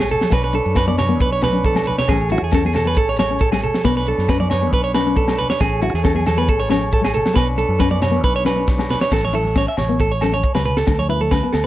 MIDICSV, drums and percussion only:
0, 0, Header, 1, 2, 480
1, 0, Start_track
1, 0, Key_signature, 3, "major"
1, 0, Tempo, 439883
1, 357, Time_signature, 4, 2, 24, 8
1, 12729, End_track
2, 0, Start_track
2, 0, Title_t, "Drums"
2, 0, Note_on_c, 9, 68, 63
2, 91, Note_on_c, 9, 70, 87
2, 105, Note_off_c, 9, 68, 0
2, 124, Note_on_c, 9, 64, 73
2, 200, Note_off_c, 9, 70, 0
2, 219, Note_on_c, 9, 70, 30
2, 232, Note_on_c, 9, 38, 67
2, 233, Note_off_c, 9, 64, 0
2, 251, Note_on_c, 9, 63, 85
2, 328, Note_off_c, 9, 70, 0
2, 336, Note_on_c, 9, 70, 71
2, 342, Note_off_c, 9, 38, 0
2, 350, Note_on_c, 9, 36, 93
2, 351, Note_on_c, 9, 68, 57
2, 355, Note_on_c, 9, 38, 73
2, 360, Note_off_c, 9, 63, 0
2, 446, Note_off_c, 9, 70, 0
2, 460, Note_off_c, 9, 36, 0
2, 461, Note_off_c, 9, 68, 0
2, 464, Note_off_c, 9, 38, 0
2, 574, Note_on_c, 9, 70, 89
2, 683, Note_off_c, 9, 70, 0
2, 709, Note_on_c, 9, 70, 31
2, 818, Note_off_c, 9, 70, 0
2, 821, Note_on_c, 9, 70, 75
2, 828, Note_on_c, 9, 68, 64
2, 833, Note_on_c, 9, 36, 87
2, 837, Note_on_c, 9, 38, 70
2, 930, Note_off_c, 9, 70, 0
2, 937, Note_off_c, 9, 68, 0
2, 942, Note_off_c, 9, 36, 0
2, 946, Note_off_c, 9, 38, 0
2, 955, Note_on_c, 9, 63, 67
2, 1064, Note_off_c, 9, 63, 0
2, 1067, Note_on_c, 9, 70, 90
2, 1073, Note_on_c, 9, 38, 76
2, 1074, Note_on_c, 9, 68, 61
2, 1081, Note_on_c, 9, 63, 62
2, 1081, Note_on_c, 9, 64, 67
2, 1176, Note_off_c, 9, 70, 0
2, 1182, Note_off_c, 9, 38, 0
2, 1183, Note_off_c, 9, 68, 0
2, 1187, Note_on_c, 9, 70, 29
2, 1190, Note_off_c, 9, 63, 0
2, 1190, Note_off_c, 9, 64, 0
2, 1297, Note_off_c, 9, 70, 0
2, 1311, Note_on_c, 9, 70, 77
2, 1314, Note_on_c, 9, 36, 96
2, 1319, Note_on_c, 9, 64, 67
2, 1420, Note_off_c, 9, 70, 0
2, 1423, Note_off_c, 9, 36, 0
2, 1428, Note_off_c, 9, 64, 0
2, 1543, Note_on_c, 9, 70, 100
2, 1555, Note_on_c, 9, 38, 72
2, 1558, Note_on_c, 9, 68, 62
2, 1562, Note_on_c, 9, 63, 79
2, 1562, Note_on_c, 9, 64, 71
2, 1652, Note_off_c, 9, 70, 0
2, 1664, Note_off_c, 9, 38, 0
2, 1667, Note_off_c, 9, 68, 0
2, 1671, Note_off_c, 9, 63, 0
2, 1671, Note_off_c, 9, 64, 0
2, 1674, Note_on_c, 9, 70, 27
2, 1694, Note_on_c, 9, 63, 50
2, 1783, Note_off_c, 9, 70, 0
2, 1789, Note_on_c, 9, 70, 68
2, 1794, Note_on_c, 9, 36, 92
2, 1803, Note_off_c, 9, 63, 0
2, 1820, Note_on_c, 9, 63, 56
2, 1898, Note_off_c, 9, 70, 0
2, 1904, Note_off_c, 9, 36, 0
2, 1918, Note_on_c, 9, 38, 68
2, 1923, Note_on_c, 9, 68, 67
2, 1929, Note_off_c, 9, 63, 0
2, 1945, Note_on_c, 9, 63, 66
2, 2020, Note_on_c, 9, 70, 82
2, 2027, Note_off_c, 9, 38, 0
2, 2032, Note_off_c, 9, 68, 0
2, 2046, Note_on_c, 9, 64, 73
2, 2054, Note_off_c, 9, 63, 0
2, 2129, Note_off_c, 9, 70, 0
2, 2142, Note_on_c, 9, 70, 25
2, 2156, Note_off_c, 9, 64, 0
2, 2164, Note_on_c, 9, 38, 67
2, 2175, Note_on_c, 9, 64, 78
2, 2251, Note_off_c, 9, 70, 0
2, 2258, Note_on_c, 9, 70, 79
2, 2269, Note_on_c, 9, 68, 62
2, 2274, Note_off_c, 9, 38, 0
2, 2277, Note_on_c, 9, 36, 91
2, 2277, Note_on_c, 9, 38, 66
2, 2284, Note_off_c, 9, 64, 0
2, 2367, Note_off_c, 9, 70, 0
2, 2379, Note_off_c, 9, 68, 0
2, 2386, Note_off_c, 9, 36, 0
2, 2386, Note_off_c, 9, 38, 0
2, 2503, Note_on_c, 9, 70, 90
2, 2612, Note_off_c, 9, 70, 0
2, 2739, Note_on_c, 9, 70, 79
2, 2750, Note_on_c, 9, 68, 65
2, 2757, Note_on_c, 9, 36, 92
2, 2759, Note_on_c, 9, 38, 70
2, 2848, Note_off_c, 9, 70, 0
2, 2859, Note_off_c, 9, 68, 0
2, 2867, Note_off_c, 9, 36, 0
2, 2868, Note_off_c, 9, 38, 0
2, 2893, Note_on_c, 9, 63, 62
2, 2983, Note_on_c, 9, 70, 94
2, 2995, Note_on_c, 9, 68, 65
2, 3001, Note_on_c, 9, 38, 78
2, 3002, Note_off_c, 9, 63, 0
2, 3016, Note_on_c, 9, 63, 66
2, 3016, Note_on_c, 9, 64, 65
2, 3092, Note_off_c, 9, 70, 0
2, 3104, Note_off_c, 9, 68, 0
2, 3108, Note_on_c, 9, 70, 27
2, 3110, Note_off_c, 9, 38, 0
2, 3126, Note_off_c, 9, 63, 0
2, 3126, Note_off_c, 9, 64, 0
2, 3211, Note_off_c, 9, 70, 0
2, 3211, Note_on_c, 9, 70, 72
2, 3239, Note_on_c, 9, 36, 89
2, 3320, Note_off_c, 9, 70, 0
2, 3348, Note_off_c, 9, 36, 0
2, 3450, Note_on_c, 9, 70, 78
2, 3481, Note_on_c, 9, 38, 74
2, 3482, Note_on_c, 9, 68, 66
2, 3486, Note_on_c, 9, 63, 74
2, 3559, Note_off_c, 9, 70, 0
2, 3585, Note_on_c, 9, 70, 23
2, 3590, Note_off_c, 9, 38, 0
2, 3591, Note_off_c, 9, 68, 0
2, 3596, Note_off_c, 9, 63, 0
2, 3694, Note_off_c, 9, 70, 0
2, 3699, Note_on_c, 9, 70, 67
2, 3719, Note_on_c, 9, 36, 92
2, 3808, Note_off_c, 9, 70, 0
2, 3828, Note_off_c, 9, 36, 0
2, 3839, Note_on_c, 9, 68, 64
2, 3849, Note_on_c, 9, 38, 71
2, 3936, Note_on_c, 9, 70, 73
2, 3948, Note_off_c, 9, 68, 0
2, 3958, Note_off_c, 9, 38, 0
2, 3973, Note_on_c, 9, 64, 72
2, 4045, Note_off_c, 9, 70, 0
2, 4070, Note_on_c, 9, 70, 24
2, 4082, Note_off_c, 9, 64, 0
2, 4085, Note_on_c, 9, 38, 71
2, 4092, Note_on_c, 9, 63, 69
2, 4179, Note_off_c, 9, 70, 0
2, 4192, Note_on_c, 9, 70, 65
2, 4194, Note_off_c, 9, 38, 0
2, 4196, Note_on_c, 9, 68, 58
2, 4198, Note_on_c, 9, 38, 71
2, 4199, Note_on_c, 9, 36, 84
2, 4201, Note_off_c, 9, 63, 0
2, 4302, Note_off_c, 9, 70, 0
2, 4305, Note_off_c, 9, 68, 0
2, 4308, Note_off_c, 9, 36, 0
2, 4308, Note_off_c, 9, 38, 0
2, 4327, Note_on_c, 9, 38, 27
2, 4433, Note_on_c, 9, 70, 75
2, 4436, Note_off_c, 9, 38, 0
2, 4542, Note_off_c, 9, 70, 0
2, 4568, Note_on_c, 9, 38, 27
2, 4676, Note_on_c, 9, 68, 67
2, 4676, Note_on_c, 9, 70, 67
2, 4678, Note_off_c, 9, 38, 0
2, 4680, Note_on_c, 9, 36, 90
2, 4682, Note_on_c, 9, 38, 72
2, 4785, Note_off_c, 9, 68, 0
2, 4785, Note_off_c, 9, 70, 0
2, 4789, Note_off_c, 9, 36, 0
2, 4791, Note_off_c, 9, 38, 0
2, 4806, Note_on_c, 9, 63, 68
2, 4910, Note_on_c, 9, 68, 63
2, 4915, Note_off_c, 9, 63, 0
2, 4915, Note_on_c, 9, 70, 79
2, 4918, Note_on_c, 9, 38, 75
2, 4929, Note_on_c, 9, 63, 60
2, 4929, Note_on_c, 9, 64, 63
2, 5019, Note_off_c, 9, 68, 0
2, 5024, Note_off_c, 9, 70, 0
2, 5027, Note_off_c, 9, 38, 0
2, 5038, Note_off_c, 9, 63, 0
2, 5038, Note_off_c, 9, 64, 0
2, 5039, Note_on_c, 9, 70, 25
2, 5149, Note_off_c, 9, 70, 0
2, 5159, Note_on_c, 9, 36, 86
2, 5163, Note_on_c, 9, 70, 63
2, 5268, Note_off_c, 9, 36, 0
2, 5272, Note_off_c, 9, 70, 0
2, 5394, Note_on_c, 9, 70, 88
2, 5395, Note_on_c, 9, 38, 70
2, 5400, Note_on_c, 9, 68, 67
2, 5503, Note_off_c, 9, 70, 0
2, 5504, Note_off_c, 9, 38, 0
2, 5509, Note_off_c, 9, 68, 0
2, 5524, Note_on_c, 9, 70, 25
2, 5633, Note_off_c, 9, 70, 0
2, 5637, Note_on_c, 9, 36, 84
2, 5637, Note_on_c, 9, 70, 63
2, 5746, Note_off_c, 9, 36, 0
2, 5746, Note_off_c, 9, 70, 0
2, 5760, Note_on_c, 9, 38, 69
2, 5761, Note_on_c, 9, 68, 63
2, 5869, Note_off_c, 9, 38, 0
2, 5870, Note_off_c, 9, 68, 0
2, 5873, Note_on_c, 9, 70, 84
2, 5893, Note_on_c, 9, 64, 64
2, 5982, Note_off_c, 9, 70, 0
2, 5999, Note_on_c, 9, 38, 69
2, 6000, Note_on_c, 9, 70, 25
2, 6002, Note_off_c, 9, 64, 0
2, 6003, Note_on_c, 9, 63, 77
2, 6105, Note_off_c, 9, 70, 0
2, 6105, Note_on_c, 9, 70, 75
2, 6108, Note_off_c, 9, 38, 0
2, 6113, Note_off_c, 9, 63, 0
2, 6118, Note_on_c, 9, 36, 97
2, 6119, Note_on_c, 9, 38, 67
2, 6119, Note_on_c, 9, 68, 61
2, 6214, Note_off_c, 9, 70, 0
2, 6227, Note_off_c, 9, 36, 0
2, 6228, Note_off_c, 9, 38, 0
2, 6229, Note_off_c, 9, 68, 0
2, 6347, Note_on_c, 9, 70, 92
2, 6456, Note_off_c, 9, 70, 0
2, 6482, Note_on_c, 9, 38, 25
2, 6584, Note_on_c, 9, 70, 74
2, 6591, Note_off_c, 9, 38, 0
2, 6598, Note_on_c, 9, 36, 89
2, 6598, Note_on_c, 9, 38, 70
2, 6599, Note_on_c, 9, 68, 68
2, 6693, Note_off_c, 9, 70, 0
2, 6707, Note_off_c, 9, 36, 0
2, 6707, Note_off_c, 9, 38, 0
2, 6708, Note_off_c, 9, 68, 0
2, 6726, Note_on_c, 9, 63, 64
2, 6827, Note_on_c, 9, 70, 89
2, 6835, Note_off_c, 9, 63, 0
2, 6836, Note_on_c, 9, 38, 76
2, 6836, Note_on_c, 9, 63, 59
2, 6836, Note_on_c, 9, 64, 63
2, 6838, Note_on_c, 9, 68, 64
2, 6937, Note_off_c, 9, 70, 0
2, 6945, Note_off_c, 9, 38, 0
2, 6945, Note_off_c, 9, 63, 0
2, 6945, Note_off_c, 9, 64, 0
2, 6947, Note_off_c, 9, 68, 0
2, 6954, Note_on_c, 9, 70, 29
2, 7063, Note_off_c, 9, 70, 0
2, 7075, Note_on_c, 9, 70, 80
2, 7078, Note_on_c, 9, 36, 95
2, 7185, Note_off_c, 9, 70, 0
2, 7187, Note_off_c, 9, 36, 0
2, 7315, Note_on_c, 9, 70, 102
2, 7319, Note_on_c, 9, 38, 77
2, 7324, Note_on_c, 9, 63, 75
2, 7329, Note_on_c, 9, 68, 68
2, 7424, Note_off_c, 9, 70, 0
2, 7428, Note_off_c, 9, 38, 0
2, 7433, Note_off_c, 9, 63, 0
2, 7438, Note_off_c, 9, 68, 0
2, 7438, Note_on_c, 9, 70, 27
2, 7547, Note_off_c, 9, 70, 0
2, 7550, Note_on_c, 9, 70, 74
2, 7559, Note_on_c, 9, 36, 87
2, 7659, Note_off_c, 9, 70, 0
2, 7668, Note_off_c, 9, 36, 0
2, 7687, Note_on_c, 9, 38, 74
2, 7690, Note_on_c, 9, 68, 63
2, 7787, Note_on_c, 9, 70, 83
2, 7796, Note_off_c, 9, 38, 0
2, 7799, Note_off_c, 9, 68, 0
2, 7806, Note_on_c, 9, 64, 76
2, 7896, Note_off_c, 9, 70, 0
2, 7915, Note_off_c, 9, 64, 0
2, 7915, Note_on_c, 9, 70, 29
2, 7919, Note_on_c, 9, 38, 74
2, 7929, Note_on_c, 9, 63, 80
2, 8024, Note_off_c, 9, 70, 0
2, 8028, Note_off_c, 9, 38, 0
2, 8029, Note_on_c, 9, 38, 72
2, 8029, Note_on_c, 9, 70, 77
2, 8034, Note_on_c, 9, 36, 93
2, 8038, Note_off_c, 9, 63, 0
2, 8047, Note_on_c, 9, 68, 65
2, 8138, Note_off_c, 9, 38, 0
2, 8138, Note_off_c, 9, 70, 0
2, 8144, Note_off_c, 9, 36, 0
2, 8156, Note_off_c, 9, 68, 0
2, 8271, Note_on_c, 9, 70, 84
2, 8380, Note_off_c, 9, 70, 0
2, 8507, Note_on_c, 9, 38, 71
2, 8512, Note_on_c, 9, 36, 89
2, 8517, Note_on_c, 9, 70, 73
2, 8524, Note_on_c, 9, 68, 65
2, 8616, Note_off_c, 9, 38, 0
2, 8622, Note_off_c, 9, 36, 0
2, 8626, Note_off_c, 9, 70, 0
2, 8631, Note_on_c, 9, 63, 60
2, 8633, Note_off_c, 9, 68, 0
2, 8740, Note_off_c, 9, 63, 0
2, 8749, Note_on_c, 9, 70, 96
2, 8751, Note_on_c, 9, 38, 74
2, 8752, Note_on_c, 9, 64, 71
2, 8758, Note_on_c, 9, 68, 63
2, 8858, Note_off_c, 9, 70, 0
2, 8860, Note_off_c, 9, 38, 0
2, 8862, Note_off_c, 9, 64, 0
2, 8868, Note_off_c, 9, 68, 0
2, 8878, Note_on_c, 9, 70, 29
2, 8986, Note_off_c, 9, 70, 0
2, 8986, Note_on_c, 9, 70, 77
2, 8990, Note_on_c, 9, 36, 91
2, 9095, Note_off_c, 9, 70, 0
2, 9099, Note_off_c, 9, 36, 0
2, 9225, Note_on_c, 9, 70, 89
2, 9229, Note_on_c, 9, 63, 72
2, 9231, Note_on_c, 9, 38, 73
2, 9241, Note_on_c, 9, 68, 66
2, 9334, Note_off_c, 9, 70, 0
2, 9338, Note_off_c, 9, 63, 0
2, 9340, Note_off_c, 9, 38, 0
2, 9348, Note_on_c, 9, 70, 26
2, 9350, Note_off_c, 9, 68, 0
2, 9457, Note_off_c, 9, 70, 0
2, 9464, Note_on_c, 9, 70, 75
2, 9469, Note_on_c, 9, 38, 49
2, 9470, Note_on_c, 9, 36, 95
2, 9573, Note_off_c, 9, 70, 0
2, 9578, Note_off_c, 9, 38, 0
2, 9579, Note_off_c, 9, 36, 0
2, 9594, Note_on_c, 9, 38, 51
2, 9596, Note_on_c, 9, 68, 63
2, 9703, Note_off_c, 9, 38, 0
2, 9703, Note_on_c, 9, 70, 83
2, 9705, Note_off_c, 9, 68, 0
2, 9714, Note_on_c, 9, 64, 61
2, 9719, Note_on_c, 9, 38, 62
2, 9812, Note_off_c, 9, 70, 0
2, 9823, Note_off_c, 9, 64, 0
2, 9828, Note_off_c, 9, 38, 0
2, 9833, Note_on_c, 9, 63, 73
2, 9836, Note_on_c, 9, 38, 72
2, 9939, Note_on_c, 9, 70, 81
2, 9942, Note_off_c, 9, 63, 0
2, 9945, Note_off_c, 9, 38, 0
2, 9949, Note_on_c, 9, 36, 86
2, 9951, Note_on_c, 9, 38, 65
2, 9951, Note_on_c, 9, 49, 69
2, 9957, Note_on_c, 9, 68, 52
2, 10048, Note_off_c, 9, 70, 0
2, 10058, Note_off_c, 9, 36, 0
2, 10060, Note_off_c, 9, 38, 0
2, 10060, Note_off_c, 9, 49, 0
2, 10066, Note_off_c, 9, 68, 0
2, 10080, Note_on_c, 9, 63, 60
2, 10177, Note_on_c, 9, 70, 62
2, 10189, Note_off_c, 9, 63, 0
2, 10286, Note_off_c, 9, 70, 0
2, 10307, Note_on_c, 9, 63, 61
2, 10416, Note_off_c, 9, 63, 0
2, 10425, Note_on_c, 9, 70, 91
2, 10427, Note_on_c, 9, 68, 59
2, 10428, Note_on_c, 9, 36, 87
2, 10428, Note_on_c, 9, 38, 64
2, 10534, Note_off_c, 9, 70, 0
2, 10536, Note_off_c, 9, 68, 0
2, 10537, Note_off_c, 9, 36, 0
2, 10537, Note_off_c, 9, 38, 0
2, 10663, Note_on_c, 9, 68, 57
2, 10666, Note_on_c, 9, 70, 67
2, 10669, Note_on_c, 9, 38, 70
2, 10671, Note_on_c, 9, 64, 58
2, 10772, Note_off_c, 9, 68, 0
2, 10775, Note_off_c, 9, 70, 0
2, 10778, Note_off_c, 9, 38, 0
2, 10780, Note_off_c, 9, 64, 0
2, 10908, Note_on_c, 9, 70, 90
2, 10909, Note_on_c, 9, 36, 79
2, 10917, Note_on_c, 9, 64, 61
2, 11017, Note_off_c, 9, 70, 0
2, 11018, Note_off_c, 9, 36, 0
2, 11026, Note_off_c, 9, 64, 0
2, 11143, Note_on_c, 9, 68, 62
2, 11149, Note_on_c, 9, 38, 64
2, 11151, Note_on_c, 9, 63, 62
2, 11154, Note_on_c, 9, 70, 72
2, 11252, Note_off_c, 9, 68, 0
2, 11259, Note_off_c, 9, 38, 0
2, 11260, Note_off_c, 9, 63, 0
2, 11263, Note_off_c, 9, 70, 0
2, 11274, Note_on_c, 9, 63, 55
2, 11380, Note_on_c, 9, 70, 97
2, 11384, Note_off_c, 9, 63, 0
2, 11389, Note_on_c, 9, 36, 84
2, 11490, Note_off_c, 9, 70, 0
2, 11498, Note_off_c, 9, 36, 0
2, 11513, Note_on_c, 9, 38, 61
2, 11513, Note_on_c, 9, 68, 61
2, 11621, Note_on_c, 9, 70, 62
2, 11622, Note_off_c, 9, 38, 0
2, 11622, Note_off_c, 9, 68, 0
2, 11626, Note_on_c, 9, 64, 65
2, 11730, Note_off_c, 9, 70, 0
2, 11735, Note_off_c, 9, 64, 0
2, 11750, Note_on_c, 9, 38, 66
2, 11859, Note_off_c, 9, 38, 0
2, 11861, Note_on_c, 9, 68, 56
2, 11862, Note_on_c, 9, 38, 68
2, 11863, Note_on_c, 9, 70, 91
2, 11867, Note_on_c, 9, 36, 88
2, 11971, Note_off_c, 9, 38, 0
2, 11971, Note_off_c, 9, 68, 0
2, 11972, Note_off_c, 9, 70, 0
2, 11976, Note_off_c, 9, 36, 0
2, 11993, Note_on_c, 9, 63, 64
2, 12102, Note_off_c, 9, 63, 0
2, 12111, Note_on_c, 9, 70, 66
2, 12220, Note_off_c, 9, 70, 0
2, 12232, Note_on_c, 9, 63, 59
2, 12341, Note_off_c, 9, 63, 0
2, 12346, Note_on_c, 9, 68, 63
2, 12349, Note_on_c, 9, 36, 86
2, 12349, Note_on_c, 9, 38, 67
2, 12350, Note_on_c, 9, 70, 90
2, 12455, Note_off_c, 9, 68, 0
2, 12458, Note_off_c, 9, 36, 0
2, 12458, Note_off_c, 9, 38, 0
2, 12459, Note_off_c, 9, 70, 0
2, 12584, Note_on_c, 9, 70, 76
2, 12587, Note_on_c, 9, 68, 60
2, 12588, Note_on_c, 9, 38, 72
2, 12693, Note_off_c, 9, 70, 0
2, 12696, Note_off_c, 9, 68, 0
2, 12697, Note_off_c, 9, 38, 0
2, 12729, End_track
0, 0, End_of_file